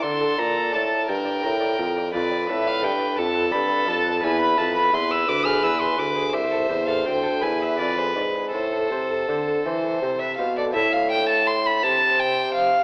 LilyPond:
<<
  \new Staff \with { instrumentName = "Violin" } { \time 6/8 \key g \dorian \tempo 4. = 56 c'''8 bes''8 a''8 g''4. | \key a \minor d''8 e''16 f''16 g''8 a''8 b''8 a''8 | gis''16 b''16 a''16 b''16 c'''16 e'''16 d'''16 f'''16 e'''16 c'''16 d'''8 | e''8. f''16 g''8 gis''16 e''16 d''16 c''16 b'8 |
a'2~ a'8 r8 | r4. c''4. | }
  \new Staff \with { instrumentName = "Violin" } { \time 6/8 \key g \dorian a'4. bes'4. | \key a \minor b'4. a'4. | b'2. | c''4. b'4. |
c''4. c''8. e''16 f''16 d''16 | e''16 f''16 g''16 a''16 c'''16 b''16 a''8 g''8 f''8 | }
  \new Staff \with { instrumentName = "Lute" } { \time 6/8 \key g \dorian r16 a'16 d''16 a'16 d''16 a'16 r16 d''16 bes'16 d''16 bes'16 d''16 | \key a \minor r16 d''16 a'16 d''16 a'16 d''16 r16 b'16 d''16 b'16 d''16 b'16 | r16 b'16 e''16 b'16 e''16 b'16 r16 gis'16 b'16 gis'16 b'16 gis'16 | r16 a'16 c''16 a'16 c''16 a'16 r16 gis'16 d''16 gis'16 d''16 gis'16 |
r16 a'16 c''16 a'16 c''16 a'16 c''16 a'16 c''16 b'16 c''16 a'16 | <c' e' a'>2. | }
  \new Staff \with { instrumentName = "Lute" } { \clef bass \time 6/8 \key g \dorian d8 bes,8 a,8 g,8 a,8 f,8 | \key a \minor f,8 a,8 g,8 f,8 g,8 f,8 | e,8 f,8 e,8 d,8 e,8 d,8 | r8 e,8 d,8 e,8 f,8 gis,8 |
a,8 c8 d8 e8 c8 b,8 | a,4. c4. | }
  \new Staff \with { instrumentName = "Bassoon" } { \clef bass \time 6/8 \key g \dorian d8 bes,8 a,8 g,8 a,8 f,8 | \key a \minor f,8 a,8 g,8 f,8 g,8 f,8 | e,8 f,8 e,8 d,8 e,8 d,8 | c,8 e,8 d,8 e,8 f,8 gis,8 |
a,8 c8 d8 e8 c8 b,8 | a,4. c4. | }
>>